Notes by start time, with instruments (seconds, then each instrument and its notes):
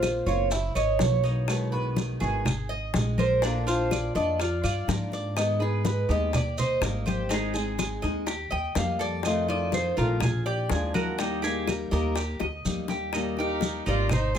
Already playing: upright bass A#1, nylon-string guitar A#3 C4 F4, cuban tres F4 C5
0.03 high bongo, high conga, claves, maracas
0.26 upright bass F#1, nylon-string guitar A#3 C4 F4, cuban tres C#5, high bongo, high conga, maracas
0.51 cuban tres E4, muted nylon-string guitar stroke, high bongo, high conga, maracas
0.75 upright bass G#1, cuban tres C#5 D#5, high bongo, high conga, claves, maracas
0.99 upright bass B1, nylon-string guitar E3 A#3 C#4 F#4, cuban tres C#5, high bongo, low bongo, high conga, maracas
1.24 cuban tres D#4, high bongo, high conga, maracas
1.48 nylon-string guitar B2 D#3 G#3 B3 F#4, high bongo, high conga, claves, maracas
1.72 nylon-string guitar D#3 G#3 B3 F#4, cuban tres B4, high conga
1.96 high bongo, high conga, maracas
2.20 upright bass G#1, nylon-string guitar D#3 G#3 B3 F#4, cuban tres G#4, high conga, maracas
2.45 muted nylon-string guitar stroke, high bongo, high conga, low conga, claves, maracas
2.69 cuban tres D#5, high conga
2.93 upright bass A#1, nylon-string guitar G#3 C4 D#4 G#4, high bongo, low bongo, high conga, maracas
3.18 cuban tres A#4 C5, high conga, claves, maracas
3.42 nylon-string guitar D3 A#3 D4 F4, cuban tres D4 A#4, high bongo, high conga, maracas
3.67 nylon-string guitar A#3 D4 F4, cuban tres F4 C5, high conga, maracas
3.91 cuban tres D5, high bongo, high conga, claves, maracas
4.14 upright bass F2, nylon-string guitar A#3 D4 F4, cuban tres D5 D#5, high bongo, high conga, maracas
4.39 cuban tres F4 D5, muted nylon-string guitar stroke, high bongo, high conga, maracas
4.63 upright bass G2, cuban tres F4 D5, high bongo, high conga, claves, maracas
4.87 upright bass G#2, nylon-string guitar D3 A#3 D4 F4, cuban tres A#4, high bongo, low bongo, high conga, maracas
5.12 cuban tres D5, high bongo, high conga, maracas
5.36 nylon-string guitar D#3 G#3 B3 D#4 G#4, cuban tres D#5, high bongo, high conga, claves, maracas
5.59 nylon-string guitar G#3 B3 D#4 G#4, cuban tres G#4 B4, high conga
5.85 cuban tres B4, high bongo, high conga, maracas
6.08 upright bass D#2, nylon-string guitar G#3 B3 D#4 G#4, cuban tres G4 D#5, high conga, maracas
6.33 cuban tres D5, muted nylon-string guitar stroke, high bongo, high conga, low conga, claves, maracas
6.58 cuban tres C5 D#5, high conga, low conga, maracas
6.81 upright bass G#1, nylon-string guitar G3 A#3 D#4 G4, cuban tres A#4, high bongo, low bongo, maracas
7.06 cuban tres G4 C5, high conga, claves, maracas
7.29 nylon-string guitar D#3 G#3 C4 D#4 G#4, cuban tres D#4, high bongo, high conga, maracas
7.33 cuban tres G#4
7.54 nylon-string guitar G#3 C4 D#4 G#4, cuban tres G#4, high conga, maracas
7.79 high bongo, high conga, claves, maracas
8.02 upright bass D#2, nylon-string guitar G#3 C4 D#4 G#4, cuban tres D#5, high bongo, high conga, maracas
8.26 cuban tres G4, muted nylon-string guitar stroke, high bongo, high conga, maracas
8.51 upright bass D#2, cuban tres D#5 G5, high bongo, high conga, claves
8.75 upright bass F2, nylon-string guitar G3 A#3 D#4 G4, cuban tres F5, high bongo, low bongo, high conga, maracas
8.99 cuban tres A4 D5, high bongo, high conga, maracas
9.23 nylon-string guitar C3 D#3 A3 C4 F4, cuban tres D#5, high bongo, high conga, claves, maracas
9.48 nylon-string guitar D#3 A3 C4 F4, cuban tres D5 D#5, high conga
9.72 cuban tres C5, high bongo, high conga, maracas
9.97 upright bass A#1, nylon-string guitar D#3 A3 C4 F4, cuban tres F4 A#4, high conga, maracas
10.20 cuban tres G#4, muted nylon-string guitar stroke, high bongo, high conga, low conga, claves, maracas
10.46 cuban tres G4 D5, high conga
10.70 upright bass D#2, nylon-string guitar F3 G#3 D4 F4, cuban tres G#4, high bongo, low bongo, high conga, maracas
10.94 cuban tres F#4 A#4, high conga, claves, maracas
11.18 nylon-string guitar D#3 G3 A#3 D#4 G4, cuban tres D#4 G4, high bongo, high conga, maracas
11.42 nylon-string guitar G3 A#3 D#4 G4, cuban tres G4 G#4, high conga, maracas
11.67 cuban tres A#4, high bongo, high conga, claves, maracas
11.91 upright bass D#2, nylon-string guitar G3 A#3 D#4 G4, cuban tres A#4 D#5, high bongo, high conga, maracas
12.16 cuban tres G4, muted nylon-string guitar stroke, high bongo, high conga, maracas
12.40 upright bass D2, cuban tres D#5, high bongo, high conga, claves
12.65 upright bass D#2, nylon-string guitar G3 A#3 D#4 G4, high conga, maracas
12.88 cuban tres G4, low bongo, high conga, maracas
13.13 nylon-string guitar D#3 G3 A#3 D#4 G4, cuban tres D#4, high bongo, high conga, claves, maracas
13.37 nylon-string guitar G3 A#3 D#4 G4, violin section D#4, cuban tres G4 A#4, high bongo, high conga
13.61 high bongo, high conga, maracas
13.86 upright bass G#1, nylon-string guitar G3 A#3 D#4 G4, cuban tres D#4 D5, violin section F4, high bongo, high conga, maracas
14.09 violin section D#4, cuban tres C5, muted nylon-string guitar stroke, high bongo, high conga, low conga, claves, maracas
14.35 cuban tres G#4, high conga, low conga